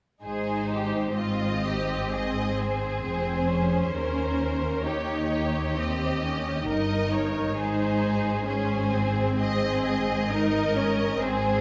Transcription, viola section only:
0.23 1.15 D#4 soft
1.19 3.03 C4 soft
3.04 3.50 C4 soft
3.50 4.86 C#4 soft
4.85 5.77 D#4 soft
5.77 6.23 C4 soft
6.22 6.68 C#4 soft
6.66 7.55 D#4 soft
7.56 8.45 D#4 soft
8.46 8.92 C#4 soft
8.91 10.30 C4 soft
10.30 10.76 D#4 soft
10.76 11.22 C#4 soft
11.20 11.61 C4 soft

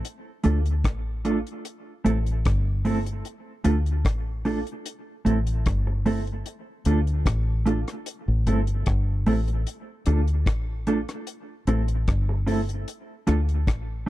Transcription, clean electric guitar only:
0.44 0.57 A3 medium
0.44 0.57 D4 medium
0.44 0.57 F4 medium
0.44 0.58 A4 loud
1.25 1.37 A3 medium
1.25 1.37 D4 medium
1.25 1.38 F4 loud
1.25 1.38 A4 medium
2.05 2.17 A3 medium
2.05 2.18 C4 medium
2.05 2.18 E4 medium
2.05 2.18 A4 medium
2.85 2.97 A3 medium
2.85 2.98 C4 medium
2.85 2.98 E4 medium
2.85 2.98 A4 medium
3.06 muted clean electric guitar stroke soft
3.64 3.77 A3 medium
3.64 3.78 D4 medium
3.64 3.78 F4 loud
3.64 3.78 A4 medium
4.45 4.58 A3 medium
4.45 4.58 D4 medium
4.45 4.58 F4 medium
4.45 4.59 A4 medium
5.25 5.38 A3 medium
5.25 5.38 C4 medium
5.25 5.38 E4 medium
5.25 5.39 A4 medium
5.87 muted clean electric guitar stroke soft
6.06 6.18 A3 medium
6.06 6.18 C4 medium
6.06 6.19 E4 medium
6.06 6.19 A4 medium
6.86 6.98 A3 medium
6.86 6.99 D4 medium
6.86 6.99 F4 medium
6.86 6.99 A4 loud
7.66 7.78 A3 medium
7.66 7.79 D4 medium
7.66 7.79 F4 medium
7.66 7.79 A4 medium
8.47 8.59 A3 medium
8.47 8.59 C4 medium
8.47 8.60 E4 medium
8.47 8.60 A4 medium
9.27 9.39 A3 medium
9.27 9.40 C4 medium
9.27 9.39 E4 medium
9.27 9.40 A4 medium
9.47 muted clean electric guitar stroke soft
10.07 10.19 A3 medium
10.07 10.19 D4 medium
10.07 10.20 F4 medium
10.07 10.20 A4 medium
10.87 10.99 A3 medium
10.87 11.00 D4 medium
10.87 11.00 F4 medium
10.87 11.00 A4 medium
11.67 11.80 A3 medium
11.67 11.80 C4 medium
11.67 11.80 E4 medium
11.67 11.81 A4 medium
12.29 muted clean electric guitar stroke soft
12.46 12.59 A3 medium
12.46 12.60 C4 medium
12.46 12.60 E4 loud
12.46 12.60 A4 loud
13.27 13.40 A3 medium
13.27 13.40 D4 medium
13.27 13.40 F4 medium
13.27 13.41 A4 medium

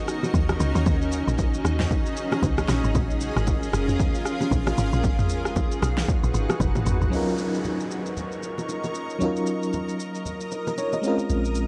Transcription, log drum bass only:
0.34 0.57 D#2 medium
0.60 0.73 C#2 loud
0.75 0.85 D#2 loud
0.86 1.22 D#2 loud
1.28 1.60 A#1 loud
1.65 1.87 D#2 loud
2.43 2.65 C#2 medium
2.69 2.82 A#1 loud
2.84 2.94 G#1 medium
2.95 3.31 A#1 loud
3.36 3.68 G#1 medium
3.73 3.96 F#1 medium
4.51 4.74 A#1 medium
4.78 4.91 G#1 loud
4.93 5.05 A#1 loud
5.04 5.47 G#1 loud
5.45 5.77 F#1 medium
5.82 6.05 B1 medium
6.23 6.33 A#1 medium
6.34 6.47 G#1 medium
6.60 6.73 F#1 loud
6.86 6.99 G#1 loud
7.01 7.11 G#1 medium

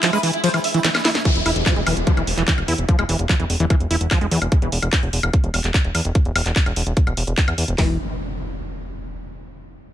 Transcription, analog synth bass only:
1.35 1.42 E1 medium
1.46 1.52 E1 loud
1.56 1.62 E1 medium
1.76 1.82 E1 medium
1.86 1.93 E1 loud
1.97 2.03 E1 medium
2.17 2.23 E1 medium
2.27 2.33 E1 loud
2.38 2.44 E1 medium
2.58 2.64 E1 medium
2.68 2.74 E2 loud
2.78 2.84 E1 medium
2.99 3.05 E1 medium
3.09 3.15 E1 loud
3.19 3.25 E1 medium
3.40 3.46 E1 medium
3.50 3.56 E1 loud
3.60 3.66 E1 medium
3.80 3.86 E1 medium
3.91 3.97 E1 loud
4.01 4.07 E1 medium
4.21 4.27 E1 medium
4.31 4.37 E2 loud
4.42 4.48 E1 loud
4.62 4.68 E1 medium
4.72 4.78 E1 loud
4.82 4.88 E1 medium
5.03 5.09 E1 medium
5.13 5.19 E1 loud
5.23 5.29 E1 medium
5.44 5.50 E1 medium
5.54 5.60 E1 loud
5.64 5.70 E1 medium
5.85 5.91 E1 medium
5.95 6.01 E2 loud
6.05 6.11 E1 medium
6.25 6.31 E1 medium
6.35 6.42 E1 loud
6.46 6.52 E1 medium
6.66 6.72 E1 medium
6.76 6.82 E1 loud
6.87 6.93 E1 medium
7.07 7.13 E1 medium
7.17 7.23 E1 loud
7.27 7.33 E1 medium
7.48 7.54 E2 medium
7.58 7.64 E2 loud
7.68 7.74 E1 loud
7.78 7.97 E1 loud

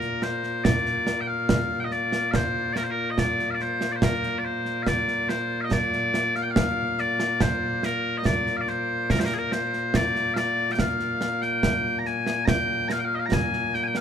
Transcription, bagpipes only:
0.00 14.01 A#2 medium
0.00 14.01 A#3 medium
0.00 0.23 A#4 medium
0.23 0.64 C5 medium
0.64 1.21 D5 medium
1.21 1.27 G5 medium
1.27 1.80 F5 medium
1.80 1.84 G5 medium
1.84 1.92 D#5 medium
1.92 2.31 D5 medium
2.31 2.35 F5 medium
2.35 2.73 C5 medium
2.73 2.83 A#4 medium
2.73 2.77 D5 medium
2.83 2.90 C5 medium
2.90 3.10 A#4 medium
3.10 3.19 D#5 medium
3.19 3.50 D5 medium
3.50 3.62 D5 medium
3.50 3.54 F5 medium
3.62 3.92 C5 medium
3.92 4.03 C5 medium
3.92 3.96 D5 medium
4.03 4.38 A#4 medium
4.38 4.45 D5 medium
4.45 4.83 C5 medium
4.83 4.87 F5 loud
4.87 5.29 D5 loud
5.29 5.61 C5 medium
5.61 5.72 D#5 medium
5.61 5.64 F5 medium
5.72 6.36 D5 loud
6.36 6.42 F5 loud
6.42 6.51 G5 medium
6.51 7.00 F5 loud
7.00 7.42 D5 medium
7.42 7.84 C5 medium
7.84 8.17 A#4 medium
8.17 8.25 D#5 medium
8.25 8.57 D5 loud
8.57 8.61 F5 medium
8.61 8.69 D5 medium
8.69 9.10 C5 medium
9.10 9.19 A#4 medium
9.19 9.25 C5 medium
9.25 9.34 A#4 medium
9.34 9.39 G#4 medium
9.39 9.52 A#4 medium
9.52 9.96 C5 medium
9.96 10.34 D5 medium
10.34 10.72 D5 loud
10.34 10.37 F5 loud
10.72 10.79 G5 medium
10.79 11.42 F5 medium
11.42 11.99 G5 loud
11.99 12.06 A#5 medium
12.06 12.45 G#5 medium
12.45 12.88 G5 loud
12.45 12.48 A#5 loud
12.88 12.99 F5 loud
12.88 12.92 A#5 loud
12.99 13.05 G5 medium
13.05 13.15 F5 medium
13.15 13.19 D#5 medium
13.19 13.26 F5 medium
13.26 13.33 A#5 medium
13.33 13.74 G#5 loud
13.74 13.83 G5 loud
13.83 13.97 G5 medium
13.83 13.87 G#5 medium
13.97 14.01 F5 medium

